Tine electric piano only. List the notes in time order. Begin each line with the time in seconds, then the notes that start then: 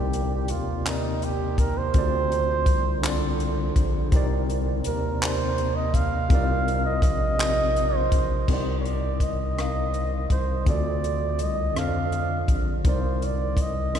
Already playing: C3 C4 D#4 A#4 D5
0.85 C3 C4 D#4
0.89 A#4 D5
1.93 D3 C4 F4
1.98 A4 D5
3.02 D3 C4 F4
3.06 A4 D5
4.11 C3 C4 D#4 A#4
4.16 D5
5.20 C3 C4 D#4
5.25 A#4 D5
6.29 C3 C4 D#4 F4
6.34 A#4 D5
7.37 C3 C4 D#4 F4
7.42 A#4 D5
7.50 D#5
8.47 C3 C4 D#4 A#4
8.53 D5
9.56 C3 C4 D#4
9.60 A#4 F5
10.65 D3 C4 F4
10.69 A4 D5
11.74 D3 C4 F4
11.79 A4 C5
11.86 D5
12.84 C3 C4 D#4 A#4
12.89 D5
13.93 C3 C4 D#4